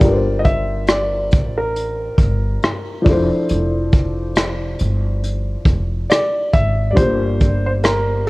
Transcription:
0.00 1.34 G1 medium
0.00 3.00 G3 medium
0.00 3.01 D4 medium
0.00 3.02 F4 medium
0.00 3.03 G4 medium
0.00 0.42 D5 loud
0.00 0.25 G5 medium
0.00 kick loud
0.00 closed hi-hat medium
0.05 3.04 A#4 medium
0.05 0.12 B4 medium
0.13 3.08 C5 medium
0.39 0.45 D#5 medium
0.44 0.85 E5 loud
0.44 kick medium
0.44 closed hi-hat medium
0.87 1.53 D5 medium
0.87 cross-stick loud
0.87 closed hi-hat medium
1.31 2.07 A1 medium
1.31 kick loud
1.31 closed hi-hat medium
1.58 3.02 A#4 medium
1.76 closed hi-hat medium
2.18 2.56 G1 medium
2.18 kick medium
2.18 closed hi-hat medium
2.62 cross-stick loud
2.62 closed hi-hat medium
3.02 6.48 F3 medium
3.02 6.49 D4 medium
3.02 open hi-hat soft
3.06 3.28 F1 loud
3.06 6.50 E4 medium
3.06 6.51 A4 medium
3.06 kick loud
3.11 6.52 C5 medium
3.49 4.76 F1 medium
3.49 closed hi-hat medium
3.92 kick medium
3.92 closed hi-hat medium
4.35 cross-stick loud
4.35 closed hi-hat medium
4.79 5.54 G1 medium
4.79 closed hi-hat medium
5.24 closed hi-hat medium
5.66 6.03 F1 medium
5.66 kick medium
5.66 closed hi-hat medium
6.10 6.55 D5 loud
6.10 cross-stick loud
6.10 closed hi-hat medium
6.53 6.91 G#1 medium
6.53 6.92 E5 loud
6.53 kick medium
6.53 closed hi-hat medium
6.91 8.29 G3 medium
6.91 8.29 D4 medium
6.91 6.97 D5 medium
6.96 8.29 G1 loud
6.96 8.29 A#3 medium
6.96 8.29 F4 medium
6.96 8.29 G4 medium
6.96 7.65 C5 loud
6.96 kick loud
6.96 closed hi-hat medium
7.02 8.29 C5 medium
7.40 kick medium
7.40 closed hi-hat medium
7.66 7.71 C5 medium
7.83 8.29 A#4 medium
7.83 cross-stick loud
7.83 closed hi-hat medium

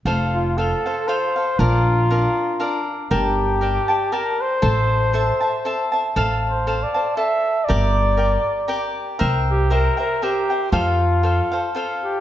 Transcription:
0.05 0.72 F1 medium
0.05 0.57 F4 medium
0.05 0.57 A4 medium
0.05 0.57 C5 medium
0.05 0.59 F5 medium
0.34 0.59 F4 medium
0.58 0.85 F4 soft
0.58 1.10 A4 medium
0.58 0.85 A4 soft
0.58 0.85 C5 medium
0.58 0.85 F5 soft
0.86 1.07 A4 soft
0.86 1.08 C5 soft
0.86 1.08 F5 soft
1.08 1.35 F4 soft
1.08 1.36 A4 soft
1.08 1.61 C5 medium
1.08 1.36 C5 soft
1.08 1.35 F5 medium
1.36 1.59 A4 soft
1.36 1.59 C5 soft
1.36 1.59 F5 soft
1.59 2.25 A#1 medium
1.59 2.10 D4 medium
1.59 2.88 F4 medium
1.59 2.10 A#4 medium
1.59 2.12 D5 medium
1.59 2.10 F5 medium
2.10 2.59 D4 soft
2.10 2.59 A#4 medium
2.10 2.61 D5 medium
2.10 2.59 F5 soft
2.60 3.10 D4 medium
2.60 3.10 A#4 medium
2.60 3.10 D5 medium
2.60 3.10 F5 medium
3.11 3.77 G1 medium
3.11 4.15 G4 medium
3.11 3.60 A#4 medium
3.11 3.60 D5 medium
3.11 3.61 G5 medium
3.11 3.63 A5 medium
3.61 3.89 A#4 soft
3.61 3.89 D5 soft
3.61 3.88 G5 soft
3.61 3.87 A5 medium
3.88 4.11 D5 soft
3.88 4.12 G5 soft
3.88 4.12 A5 soft
4.12 4.62 A#4 soft
4.12 4.43 A#4 medium
4.12 4.62 D5 medium
4.12 4.62 G5 medium
4.12 4.62 A5 medium
4.41 5.94 C5 medium
4.62 5.29 A1 medium
4.62 5.13 A4 medium
4.62 5.13 C5 medium
4.62 5.13 E5 medium
4.62 5.14 A5 medium
5.13 5.42 A4 medium
5.13 5.41 C5 soft
5.13 5.40 E5 medium
5.13 5.39 A5 medium
5.41 5.64 C5 soft
5.41 5.65 E5 soft
5.41 5.64 A5 soft
5.65 5.93 A4 soft
5.65 5.92 C5 soft
5.65 5.92 E5 medium
5.65 5.91 A5 medium
5.92 6.15 C5 soft
5.92 6.16 E5 soft
5.92 6.16 A5 soft
6.16 6.83 A1 medium
6.16 6.66 A4 medium
6.16 6.66 C5 medium
6.16 6.66 F5 medium
6.16 6.67 A5 medium
6.50 6.84 C5 medium
6.67 6.95 A4 soft
6.67 6.95 C5 soft
6.67 6.93 F5 soft
6.67 6.93 A5 soft
6.83 7.16 D5 medium
6.94 7.16 C5 soft
6.94 7.18 F5 soft
6.94 7.18 A5 soft
7.16 7.68 A4 medium
7.16 7.68 C5 medium
7.16 7.66 E5 medium
7.16 7.69 A5 soft
7.65 8.18 G4 medium
7.65 8.17 A#4 medium
7.65 8.96 D5 medium
7.70 8.35 G1 medium
7.70 8.18 D5 medium
7.70 8.18 G5 medium
8.17 8.68 G4 soft
8.17 8.67 A#4 soft
8.17 8.68 D5 soft
8.17 8.69 G5 soft
8.68 9.19 G4 medium
8.68 9.18 A#4 medium
8.68 9.20 D5 medium
8.68 9.19 G5 medium
9.19 9.87 C2 medium
9.19 9.69 A#4 medium
9.19 9.70 C5 medium
9.19 9.70 E5 medium
9.19 9.71 G5 medium
9.51 9.71 G4 medium
9.70 9.99 A#4 medium
9.70 9.98 A#4 medium
9.70 9.98 C5 medium
9.70 9.97 E5 soft
9.70 9.96 G5 medium
9.97 10.25 A#4 medium
9.97 10.22 C5 soft
9.97 10.22 E5 soft
9.97 10.21 G5 soft
10.22 10.71 G4 medium
10.22 10.50 A#4 medium
10.22 10.50 C5 medium
10.22 10.50 E5 medium
10.22 10.49 G5 medium
10.50 10.71 C5 soft
10.50 10.72 E5 soft
10.50 10.73 G5 soft
10.72 11.39 F2 medium
10.72 11.71 F4 medium
10.72 11.23 F4 medium
10.72 11.23 A4 medium
10.72 11.24 C5 medium
10.72 11.24 F5 medium
11.23 11.52 F4 soft
11.23 11.52 A4 soft
11.23 11.52 C5 soft
11.23 11.50 F5 soft
11.52 11.75 A4 soft
11.52 11.75 C5 soft
11.52 11.75 F5 soft
11.75 12.20 F4 medium
11.75 12.20 A4 medium
11.75 12.20 C5 medium
11.75 12.20 F5 medium
12.04 12.20 G4 medium

